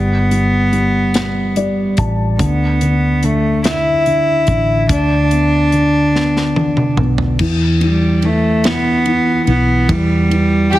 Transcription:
Already playing: fingered electric bass G1, felt piano G3, cello B3
0.31 felt piano G3, closed hi-hat
0.72 felt piano G3, closed hi-hat
1.14 snare, closed hi-hat
1.56 felt piano G3 D5, closed hi-hat
1.97 fingered electric bass A1, felt piano G3 A5, kick, closed hi-hat
2.39 fingered electric bass D2, felt piano D3, cello B3, kick, closed hi-hat
2.81 felt piano D3, closed hi-hat
3.23 felt piano D3, cello A3, closed hi-hat
3.64 cello E4, snare, closed hi-hat
4.06 felt piano D3, closed hi-hat
4.47 fingered electric bass A1, felt piano D3, kick, closed hi-hat
4.89 fingered electric bass D2, felt piano D3, cello D4, kick, closed hi-hat
5.31 felt piano B3, closed hi-hat
5.72 felt piano D3, closed hi-hat
6.14 felt piano B3, snare
6.37 snare
6.56 felt piano D3, high tom
6.77 mid tom
6.97 fingered electric bass B1, felt piano B3, mid tom
7.18 floor tom
7.39 fingered electric bass E2, felt piano E3, kick, crash
7.81 felt piano E3, cello G3, ride
8.22 felt piano E3, cello A3, ride
8.64 felt piano E3, cello B3, snare, ride
9.06 felt piano E3, ride
9.47 fingered electric bass B1, felt piano E3, cello B3, ride
9.88 fingered electric bass E2, felt piano E3, cello G3, kick, ride
10.30 felt piano E3, ride
10.72 felt piano E3, violin section G4, ride

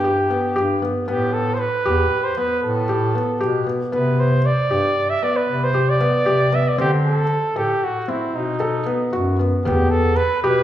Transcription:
Already playing: bass clarinet G2, flugelhorn G4
0.04 felt piano G4
0.30 felt piano B3
0.56 bass clarinet G2, felt piano G4
0.82 felt piano B3
1.08 bass clarinet A2, felt piano B3, flugelhorn G4
1.33 flugelhorn A4
1.54 flugelhorn C5
1.60 flugelhorn B4
1.86 bass clarinet E2, felt piano G4
2.24 flugelhorn C5
2.37 felt piano B3, flugelhorn B4
2.63 bass clarinet A2, flugelhorn A4
2.89 felt piano G4
3.15 felt piano B3
3.41 bass clarinet B2, felt piano G4
3.66 felt piano B3
3.92 bass clarinet C3, felt piano B3, flugelhorn B4
4.20 flugelhorn C5
4.46 flugelhorn D5
4.70 bass clarinet G2, felt piano G4
5.10 flugelhorn E5
5.23 felt piano B3, flugelhorn D5
5.37 flugelhorn B4
5.49 bass clarinet C3
5.64 flugelhorn C5
5.74 felt piano G4
5.90 flugelhorn D5
6.00 felt piano B3
6.26 bass clarinet C3, felt piano G4
6.52 felt piano B3, flugelhorn E5
6.69 flugelhorn D5
6.78 bass clarinet D3, felt piano C4, flugelhorn G4
7.06 flugelhorn A4
7.56 bass clarinet A2, flugelhorn G4, felt piano A4
7.84 flugelhorn F#4
8.08 felt piano C4, flugelhorn E4
8.34 bass clarinet B2, flugelhorn D#4
8.60 felt piano A4
8.86 felt piano B3
9.13 bass clarinet F#2, felt piano F#4
9.39 felt piano B3
9.64 bass clarinet E2, felt piano B3, flugelhorn G4, frame drum
9.90 flugelhorn A4, frame drum
10.17 flugelhorn B4, frame drum
10.43 bass clarinet B2, felt piano G4, flugelhorn B4

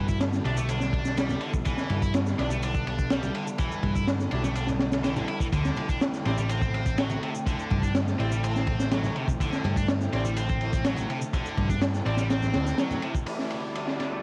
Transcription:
Already playing: picked electric bass G2, ambient pad D3 G3 B3 E4 F#4
0.08 distorted electric guitar E4, kick, shaker
0.21 snare, ride, shaker
0.33 snare, shaker
0.45 picked electric bass B1, distorted electric guitar D4, horn section E4 F#4 G4 D5, ride
0.57 distorted electric guitar A3, high conga, shaker
0.69 distorted electric guitar D4, ride, shaker
0.80 snare, shaker
0.93 kick, ride
1.05 snare, shaker
1.17 distorted electric guitar G3, snare, ride, shaker
1.29 snare, high conga, low conga, shaker
1.41 distorted electric guitar D3, ride
1.54 kick, shaker
1.65 distorted electric guitar E3, ambient pad G5, kick, ride, shaker
1.77 snare, shaker
1.89 picked electric bass G2, ride, high conga
2.02 distorted electric guitar E4, kick, shaker
2.14 snare, ride, shaker
2.26 snare, shaker
2.38 picked electric bass B1, distorted electric guitar D4, horn section E4 F#4 G4 D5, snare, ride
2.50 distorted electric guitar A3, high conga, shaker
2.62 distorted electric guitar D4, ride, shaker
2.75 kick, shaker
2.87 ride
2.99 kick, shaker
3.10 distorted electric guitar G3, snare, ride, shaker
3.23 ride, high conga, shaker
3.34 distorted electric guitar D3, ride
3.47 shaker
3.58 distorted electric guitar E3, kick, ride, shaker
3.71 shaker
3.83 picked electric bass G2, kick, ride, high conga
3.95 distorted electric guitar E4, kick, shaker
4.07 snare, ride, shaker
4.19 snare, shaker
4.31 picked electric bass B1, distorted electric guitar D4, horn section E4 F#4 G4 D5, ride
4.44 distorted electric guitar A3, snare, high conga, shaker
4.56 distorted electric guitar D4, ride, shaker
4.67 snare, low conga, shaker
4.80 snare, ride
4.92 snare, ride, shaker
5.04 distorted electric guitar E3, snare, ride, shaker
5.16 distorted electric guitar D3, snare, high conga, low conga, shaker
5.28 distorted electric guitar E4, ride
5.41 distorted electric guitar E3, kick, shaker
5.53 picked electric bass D2, distorted electric guitar D3, ambient pad A3 C4, kick, ride, shaker
5.65 snare, shaker
5.77 ride, high conga
5.89 distorted electric guitar D4, kick, shaker
6.01 snare, ride, shaker
6.13 snare, shaker
6.25 picked electric bass A1, distorted electric guitar C4, horn section E4 G4 C5 D5, snare, ride
6.38 distorted electric guitar G3, high conga, shaker
6.49 distorted electric guitar C4, ride, shaker
6.62 kick, shaker
6.74 ride
6.86 kick, shaker
6.98 distorted electric guitar F#3, snare, ride, shaker
7.10 ride, high conga, shaker
7.23 distorted electric guitar C3, ride
7.35 shaker
7.47 distorted electric guitar D3, kick, ride, shaker
7.59 shaker
7.71 picked electric bass G2, kick, ride, high conga
7.82 distorted electric guitar D4, kick, shaker
7.95 snare, ride, shaker
8.07 snare, shaker
8.19 picked electric bass A1, distorted electric guitar C4, horn section E4 G4 C5 D5, ride
8.31 distorted electric guitar G3, high conga, shaker
8.44 distorted electric guitar C4, ride, shaker
8.56 snare, shaker
8.67 kick, ride
8.80 snare, shaker
8.91 distorted electric guitar F#3, snare, ride, shaker
9.04 snare, high conga, low conga, shaker
9.16 distorted electric guitar C3, ride
9.28 kick, shaker
9.40 distorted electric guitar D3, kick, ride, shaker
9.52 snare, shaker
9.64 picked electric bass G2, ride, high conga
9.76 distorted electric guitar D4, kick, shaker
9.88 snare, ride, shaker
10.01 snare, shaker
10.13 picked electric bass A1, distorted electric guitar C4, horn section E4 G4 C5 D5, snare, ride
10.24 distorted electric guitar G3, high conga, shaker
10.37 distorted electric guitar C4, ride, shaker
10.49 kick, shaker
10.61 ride
10.73 kick, shaker
10.85 distorted electric guitar F#3, snare, ride, shaker
10.97 ride, high conga, shaker
11.09 distorted electric guitar C3, ride
11.22 shaker
11.33 distorted electric guitar D3, kick, ride, shaker
11.46 shaker
11.57 picked electric bass G2, kick, ride, high conga
11.69 distorted electric guitar D4, kick, low conga, shaker
11.82 snare, ride, shaker
11.94 snare, shaker
12.06 picked electric bass A1, distorted electric guitar C4, horn section E4 G4 C5 D5, ride
12.17 distorted electric guitar G3, snare, high conga, shaker
12.30 distorted electric guitar C4, snare, ride, shaker
12.42 snare, low conga, shaker
12.54 picked electric bass D2, snare, ride
12.66 snare, shaker
12.78 distorted electric guitar F#3, snare, ride, shaker
12.90 snare, high conga, low conga, shaker
13.02 distorted electric guitar C3, ride
13.15 kick, shaker
13.26 ambient pad D3 G3 B3 E4 F#5, distorted electric guitar E3, horn section E4 F#4 G4 D5, ride, downlifter
13.39 snare
13.50 ride
13.63 distorted electric guitar E4
13.75 ride
13.87 snare
14.00 distorted electric guitar D4, snare, ride
14.12 distorted electric guitar A3

